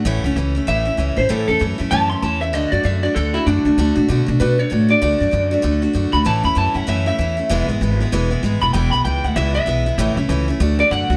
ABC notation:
X:1
M:4/4
L:1/8
Q:"Swing" 1/4=193
K:A
V:1 name="Clean electric guitar"
f2 z2 e3 =c | A A z2 a =c' a e | ^d =d e d A E D2- | D2 z2 B c2 d |
d4 z3 b | a b a f e e3- | e z6 b | =g b g f e e3- |
e z4 d f2 |]
V:2 name="Steel-string acoustic guitar"
[A,,E,A,CE] [A,CE] [E,A,CE] [A,CE] [A,,E,A,CE] [A,CE] [E,A,CE] [A,CE] | [A,,E,A,CE] [A,CE] [E,A,CE] [A,CE] [A,,E,A,CE] [A,CE] [E,A,CE] [A,CE] | [D,A,DF] [A,DF] [D,A,DF] [A,DF] [D,A,DF] [A,DF] [D,A,DF] [A,DF] | [D,A,DF] [A,DF] [D,A,DF] [A,DF] [D,A,DF] [A,DF] [D,A,DF] [A,DF] |
[D,A,DF] [A,DF] [D,A,DF] [A,DF] [D,A,DF] [A,DF] [D,A,DF] [A,DF] | [A,,E,A,CE] [A,CE] [E,A,CE] [A,CE] [A,,E,A,CE] [A,CE] [E,A,CE] [A,CE] | [E,,B,,E,G,B,E] [E,G,B,E] [E,G,B,E] [E,G,B,E] [E,,B,,E,G,B,E] [E,G,B,E] [E,G,B,E] [E,G,B,E] | [E,,B,,E,G,B,E] [E,G,B,E] [E,G,B,E] [E,G,B,E] [E,,B,,E,G,B,E] [E,G,B,E] [E,G,B,E] [E,G,B,E] |
[A,,E,A,CE] [A,CE] [E,A,CE] [A,CE] [D,A,DF] [A,DF] [D,A,DF] [A,DF] |]
V:3 name="Upright bass" clef=bass
A,,, C,, C,,2 A,,,2 C,, A,,, | A,,, E,, F,, F,, F,,2 E,,2 | D,, F,, F,,2 D,,2 F,, D,, | D,, A,, B,, B,, B,,2 A,,2 |
D,, F,, F,,2 D,,2 F,, D,, | A,,, E,, F,, F,, F,,2 E,,2 | E,,, G,,, G,,,2 E,,,2 G,,, E,,, | E,,, B,,, C,, D,, C,,2 B,,,2 |
A,,, C,, C,,2 D,,2 F,, D,, |]